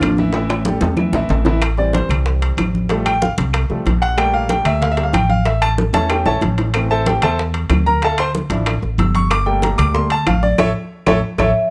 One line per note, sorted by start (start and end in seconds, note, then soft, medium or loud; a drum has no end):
0.00 0.76 A1 medium
0.00 0.11 F3 medium
0.00 0.10 A#3 medium
0.00 0.09 D4 medium
0.00 0.11 F4 medium
0.00 0.12 F5 medium
0.00 high bongo soft
0.00 low bongo medium
0.00 high conga medium
0.00 high timbale medium
0.00 low timbale medium
0.00 claves medium
0.17 0.32 E3 medium
0.17 1.43 A3 medium
0.17 1.42 C#4 medium
0.17 0.31 E4 medium
0.17 0.32 E5 medium
0.17 high bongo soft
0.17 high conga medium
0.33 0.61 E3 medium
0.33 0.61 E4 medium
0.33 0.61 E5 medium
0.33 high bongo medium
0.33 high timbale medium
0.49 high bongo soft
0.49 high timbale medium
0.49 claves medium
0.65 0.93 G3 medium
0.65 0.93 G4 medium
0.65 0.93 A4 medium
0.65 high bongo medium
0.65 high conga loud
0.81 1.11 E2 medium
0.81 low bongo loud
0.81 high conga medium
0.81 low timbale medium
0.97 1.12 E3 medium
0.97 1.12 E4 medium
0.97 1.12 E5 medium
0.97 low bongo medium
0.97 high conga medium
0.97 claves medium
1.13 1.28 A#1 medium
1.13 1.41 E3 medium
1.13 1.41 E4 medium
1.13 1.41 E5 medium
1.13 low bongo loud
1.13 low conga medium
1.13 low timbale medium
1.29 2.04 A1 medium
1.29 low conga medium
1.29 low timbale medium
1.45 1.59 E3 medium
1.45 1.59 E4 medium
1.45 1.59 E5 medium
1.45 low bongo medium
1.45 low conga medium
1.45 low timbale medium
1.62 high bongo medium
1.62 high conga soft
1.62 high timbale medium
1.62 claves medium
1.77 2.86 E3 medium
1.77 2.86 G3 medium
1.77 2.86 C4 medium
1.77 1.94 D5 medium
1.77 high bongo soft
1.77 high conga soft
1.93 2.10 C5 medium
1.93 high bongo medium
1.93 high conga medium
1.93 high timbale medium
2.09 2.54 C2 medium
2.09 high bongo soft
2.09 low conga medium
2.09 high timbale medium
2.09 claves medium
2.26 high bongo medium
2.26 high conga soft
2.42 high bongo soft
2.42 high conga soft
2.42 high timbale medium
2.57 3.32 A1 medium
2.57 high bongo soft
2.57 low bongo medium
2.57 high conga medium
2.57 high timbale medium
2.57 claves medium
2.75 high conga medium
2.89 3.11 F3 medium
2.89 3.12 G3 medium
2.89 3.12 A3 medium
2.89 high bongo medium
2.89 high conga soft
2.89 high timbale medium
3.05 3.21 G5 loud
3.05 high bongo soft
3.05 high conga soft
3.05 high timbale loud
3.05 claves medium
3.22 3.31 F5 medium
3.22 high bongo medium
3.22 high conga loud
3.38 3.68 C2 medium
3.38 high bongo soft
3.38 high conga loud
3.38 high timbale medium
3.53 high bongo medium
3.53 high conga soft
3.53 high timbale medium
3.53 claves medium
3.70 3.85 C2 medium
3.70 3.85 F3 soft
3.70 3.85 G3 soft
3.70 3.85 A3 medium
3.70 high bongo soft
3.70 high conga soft
3.86 4.61 A#1 medium
3.86 high bongo soft
3.86 low bongo medium
3.86 high conga medium
3.86 high timbale medium
4.02 4.17 F#5 loud
4.02 high timbale medium
4.17 4.95 G3 medium
4.17 4.96 A3 medium
4.17 4.96 A#3 medium
4.17 4.33 G5 loud
4.17 high bongo medium
4.17 high conga soft
4.17 high timbale medium
4.17 claves medium
4.33 4.49 F5 medium
4.33 high bongo soft
4.33 high conga soft
4.49 4.66 G5 medium
4.49 high bongo medium
4.49 high conga medium
4.49 high timbale medium
4.65 5.10 D2 medium
4.65 4.82 E5 medium
4.65 high bongo soft
4.65 low conga medium
4.65 high timbale medium
4.65 claves medium
4.82 4.92 F5 medium
4.82 high bongo medium
4.82 high conga soft
4.82 low conga medium
4.92 5.03 E5 medium
4.97 5.12 G3 soft
4.97 5.12 A3 soft
4.97 5.12 A#3 medium
4.97 high bongo soft
4.97 high conga soft
4.97 high timbale medium
5.03 5.14 F5 medium
5.13 5.88 A1 medium
5.13 5.30 G5 medium
5.13 high bongo soft
5.13 low bongo medium
5.13 high conga medium
5.13 high timbale loud
5.13 claves medium
5.30 5.45 F5 medium
5.30 high conga medium
5.45 5.62 E5 medium
5.45 high bongo medium
5.45 high timbale medium
5.62 5.72 A5 loud
5.62 high bongo soft
5.62 high conga soft
5.62 high timbale medium
5.62 claves medium
5.78 high bongo medium
5.78 high conga loud
5.93 6.23 E2 medium
5.93 6.70 E3 medium
5.93 6.70 A3 medium
5.93 6.71 C#4 medium
5.93 6.10 A4 medium
5.93 6.10 C#5 medium
5.93 6.10 E5 medium
5.93 6.10 A5 medium
5.93 high bongo medium
5.93 high conga loud
5.93 high timbale medium
6.10 6.26 G4 medium
6.10 6.26 G5 medium
6.10 high bongo medium
6.10 high conga soft
6.10 high timbale medium
6.10 claves medium
6.26 6.41 A#1 medium
6.26 6.42 A4 medium
6.26 6.42 C#5 medium
6.26 6.42 E5 medium
6.26 6.42 A5 medium
6.26 low bongo loud
6.26 high conga soft
6.41 7.17 A1 medium
6.41 low bongo medium
6.41 high conga medium
6.41 high timbale medium
6.58 low bongo medium
6.58 high timbale medium
6.74 7.20 E3 medium
6.74 7.21 A3 medium
6.74 7.21 C4 medium
6.74 high bongo medium
6.74 high timbale medium
6.74 claves medium
6.90 7.07 A4 medium
6.90 7.06 C5 medium
6.90 7.06 E5 medium
6.90 7.06 A5 medium
6.90 high bongo soft
6.90 high conga soft
7.06 7.23 G4 medium
7.06 7.23 G5 medium
7.06 high bongo medium
7.06 high conga loud
7.06 high timbale medium
7.22 7.67 E2 medium
7.22 7.39 A4 medium
7.22 7.39 C5 medium
7.22 7.39 E5 medium
7.22 7.39 A5 medium
7.22 high bongo soft
7.22 low conga medium
7.22 high timbale loud
7.22 claves medium
7.38 high bongo medium
7.38 high conga soft
7.54 high bongo soft
7.54 high conga soft
7.54 high timbale medium
7.70 8.45 D2 medium
7.70 high bongo soft
7.70 low bongo medium
7.70 high conga medium
7.70 high timbale medium
7.70 low timbale medium
7.70 claves medium
7.86 8.03 A#4 medium
7.86 8.02 A#5 loud
7.86 high conga medium
8.02 8.19 A4 medium
8.02 8.19 E5 medium
8.02 8.19 F5 medium
8.02 8.19 A5 medium
8.02 high bongo medium
8.02 high timbale medium
8.18 8.29 C5 medium
8.18 8.29 C6 loud
8.18 high bongo soft
8.18 high conga soft
8.18 high timbale loud
8.18 claves medium
8.35 high bongo medium
8.35 high conga loud
8.50 8.80 A1 loud
8.50 8.72 F3 medium
8.50 8.72 D4 medium
8.50 8.73 E4 medium
8.50 high bongo soft
8.50 high conga medium
8.50 high timbale medium
8.66 high bongo medium
8.66 high conga soft
8.66 high timbale medium
8.66 claves medium
8.82 8.98 A1 medium
8.82 high bongo soft
8.82 high conga soft
8.98 9.73 G1 loud
8.98 9.15 E6 medium
8.98 high bongo soft
8.98 low bongo medium
8.98 high conga medium
8.98 high timbale medium
9.15 9.31 C#6 loud
9.15 high conga medium
9.15 high timbale medium
9.30 9.47 D6 loud
9.30 high bongo medium
9.30 high conga soft
9.30 high timbale medium
9.30 claves medium
9.46 9.92 G3 medium
9.46 9.93 A3 medium
9.46 9.94 A#3 medium
9.46 9.62 G5 medium
9.46 high bongo soft
9.46 high conga soft
9.62 9.79 A#5 medium
9.62 high bongo medium
9.62 high conga loud
9.62 high timbale medium
9.78 10.23 D2 loud
9.78 9.94 D6 loud
9.78 high bongo soft
9.78 low conga loud
9.78 high timbale loud
9.78 claves medium
9.94 10.09 G3 soft
9.94 10.09 A3 soft
9.94 10.10 A#3 medium
9.94 10.10 C6 medium
9.94 high bongo medium
9.94 high conga soft
9.94 low conga medium
10.10 10.27 A5 medium
10.10 high bongo soft
10.10 high conga soft
10.10 high timbale medium
10.27 10.57 A1 medium
10.27 10.43 F5 medium
10.27 high bongo soft
10.27 low bongo medium
10.27 high conga medium
10.27 high timbale medium
10.27 claves medium
10.43 10.59 D5 medium
10.43 high conga medium
10.58 10.71 A1 medium
10.58 10.70 A4 loud
10.58 10.70 C#5 loud
10.58 10.70 E5 loud
10.58 high bongo loud
10.58 high conga loud
10.58 high timbale loud
10.58 claves loud
11.06 11.19 A1 loud
11.06 11.18 A4 loud
11.06 11.18 C#5 loud
11.06 11.18 E5 medium
11.06 high bongo loud
11.06 high conga loud
11.06 high timbale loud
11.06 claves loud
11.38 11.51 A1 loud
11.38 11.50 A4 medium
11.38 11.50 C#5 medium
11.38 11.70 C#5 medium
11.38 11.50 E5 medium
11.38 11.70 E5 loud
11.38 high bongo loud
11.38 high conga loud
11.38 high timbale loud
11.38 claves medium